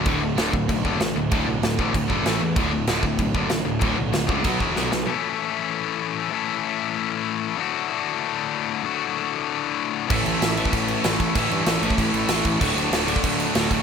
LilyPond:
<<
  \new Staff \with { instrumentName = "Overdriven electric guitar" } { \clef bass \time 4/4 \key d \major \tempo 4 = 191 <d, a, d>1 | <d, a, d>2. <a, e a>4 | <d, a, d>1 | <d, a, d>2 <b, fis b>4 <b, fis b>4 |
r1 | r1 | r1 | r1 |
<a, e a>4. <a, e a>4. <a, e a>4 | <a, e a>4. <a, e a>4. <a, e a>4 | <d, a, d>4. <d, a, d>4. <d, a, d>4 | }
  \new Staff \with { instrumentName = "Distorted electric guitar" } { \clef bass \time 4/4 \key d \major <d, a, d>8 <d, a,>8 <d, a, d>8 <d, a,>8 <d, a,>8 <d, a, d>8 <d, a,>8 <d, a,>8 | <d, a, d>8 <d, a,>8 <d, a,>8 <d, a, d>8 <d, a,>8 <d, a, d>8 <a, e a>8 <a, e>8 | <d, a, d>8 <d, a,>8 <d, a, d>8 <d, a,>8 <d, a,>8 <d, a, d>8 <d, a,>8 <d, a,>8 | <d, a, d>8 <d, a,>8 <d, a,>8 <d, a, d>8 <b, fis b>8 <b, fis b>8 <b, fis b>8 <b, fis>8 |
<a, e a cis' e' a'>1 | <a, e a cis' e' a'>1 | <d, a, d a fis'>1 | <d, a, d a fis'>1 |
<a, e a cis' e' a'>1 | <a, e a cis' e' a'>1 | <d, a, d a fis'>1 | }
  \new Staff \with { instrumentName = "Distorted electric guitar" } { \clef bass \time 4/4 \key d \major <d, a, d>8 <d, a,>8 <d, a, d>8 <d, a,>8 <d, a,>8 <d, a, d>8 <d, a,>8 <d, a,>8 | <d, a, d>8 <d, a,>8 <d, a,>8 <d, a, d>8 <d, a,>8 <d, a, d>8 <a, e a>8 <a, e>8 | <d, a, d>8 <d, a,>8 <d, a, d>8 <d, a,>8 <d, a,>8 <d, a, d>8 <d, a,>8 <d, a,>8 | <d, a, d>8 <d, a,>8 <d, a,>8 <d, a, d>8 <b, fis b>8 <b, fis b>8 <b, fis b>8 <b, fis>8 |
r1 | r1 | r1 | r1 |
<a, e a>4. <a, e a>4. <a, e a>4 | <a, e a>4. <a, e a>4. <a, e a>4 | <d, a, d>4. <d, a, d>4. <d, a, d>4 | }
  \new Staff \with { instrumentName = "Picked electric bass" } { \clef bass \time 4/4 \key d \major d,,4 d,,8 d,,8 b,,8 fis,,8 a,,8 d,,8 | d,,8 b,,8 d,,8 a,,8 d,8 fis,,8 a,,8 e,8 | d,,4 d,,8 d,,8 b,,8 fis,,8 a,,8 d,,8 | d,,8 b,,8 d,,8 cis,8 b,,8 e,,8 b,,8 b,,8 |
r1 | r1 | r1 | r1 |
a,,8 a,,8 a,,4 a,,4 a,,8 a,,8 | a,,8 g,8 a,,8 a,,8 a,,8 a,,8 a,,8 a,,8 | d,,8 d,,8 d,,4 d,,4 d,,8 d,,8 | }
  \new DrumStaff \with { instrumentName = "Drums" } \drummode { \time 4/4 <cymc bd>4 <cymc sn>8 bd8 <cymc bd>8 bd8 <cymc sn>4 | <cymc bd>4 <cymc sn>8 bd8 <cymc bd>8 bd8 <cymc sn>4 | <cymc bd>4 <cymc sn>8 bd8 <cymc bd>8 bd8 <cymc sn>4 | <cymc bd>4 <cymc sn>8 bd8 <cymc bd>8 bd8 sn8 sn8 |
r4 r4 r4 r4 | r4 r4 r4 r4 | r4 r4 r4 r4 | r4 r4 r4 r4 |
<cymc bd>8 cymc8 <cymc sn>8 cymc16 bd16 <cymc bd>8 cymc8 <cymc sn>8 <cymc bd>8 | <cymc bd>8 cymc8 <cymc sn>8 cymc16 bd16 <cymc bd>8 cymc8 <cymc sn>8 <cymc bd>8 | <cymc bd>8 cymc8 <cymc sn>8 cymc16 bd16 <cymc bd>8 cymc8 <cymc sn>8 <cymc bd>8 | }
>>